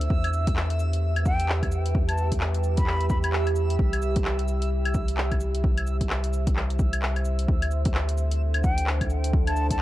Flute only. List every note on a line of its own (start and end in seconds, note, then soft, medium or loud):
1.26 1.50 G5 medium
2.09 2.29 A5 medium
2.77 3.08 B5 medium
3.10 3.19 B5 medium
3.23 3.29 B5 medium
8.64 8.88 G5 medium
9.47 9.67 A5 medium
9.70 9.82 A5 medium